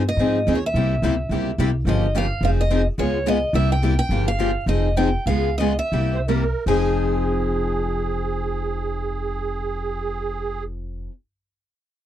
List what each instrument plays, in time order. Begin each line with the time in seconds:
Already playing: upright bass G2
0.09 steel-string acoustic guitar D#5
0.17 upright bass G#2, steel-string acoustic guitar F3 C4 D#4 G#4
0.47 upright bass D#2, steel-string acoustic guitar F3 C4 D#4 G#4
0.55 steel-string acoustic guitar C#5
0.66 steel-string acoustic guitar E5
0.74 upright bass C2, steel-string acoustic guitar C3 G3 A#3 E4 G4
1.02 upright bass C#2, steel-string acoustic guitar C3 G3 A#3 E4 G4
1.29 upright bass C#2, steel-string acoustic guitar C3 G3 A#3 E4 G4
1.58 upright bass C2, steel-string acoustic guitar C3 G3 A#3 E4 G4
1.85 upright bass G1, steel-string acoustic guitar C#3 F3 A#3 F4 G4 D#5
2.15 steel-string acoustic guitar C#3 F3 A#3 F4 G4 F5
2.41 upright bass F1, steel-string acoustic guitar F3 C4 D#4 G#4 F5
2.61 steel-string acoustic guitar D#5
2.71 steel-string acoustic guitar F3 C4 D#4 G#4
2.98 upright bass C#2, steel-string acoustic guitar C#3 G#3 B3 F4 G#4 C#5
3.26 steel-string acoustic guitar C#3 G#3 B3 F4 G#4 D#5
3.53 upright bass C2, steel-string acoustic guitar C3 G3 A#3 E4 G4 E5
3.72 steel-string acoustic guitar G5
3.82 steel-string acoustic guitar C3 G3 A#3 E4 G4
3.99 steel-string acoustic guitar G5
4.09 upright bass G1, steel-string acoustic guitar C#3 F3 A#3 F4 G4
4.28 steel-string acoustic guitar F5
4.39 steel-string acoustic guitar C#3 F3 A#3 F4 G4
4.66 upright bass F1, steel-string acoustic guitar F3 C4 D#4 G#4 D#5
4.97 steel-string acoustic guitar F3 C4 D#4 G#4 G5
5.26 upright bass C#2, steel-string acoustic guitar C#3 G#3 B3 F4 G#4 F5
5.58 steel-string acoustic guitar C#3 G#3 B3 F4 G#4 D#5
5.79 steel-string acoustic guitar E5
5.92 upright bass C2, steel-string acoustic guitar C3 G3 A#3 E4 G4
6.14 accordion C5
6.28 steel-string acoustic guitar C3 G3 A#3 E4 G4, accordion A#4
6.66 upright bass F1, steel-string acoustic guitar F3 C4 D#4 G#4 G#5, accordion G#4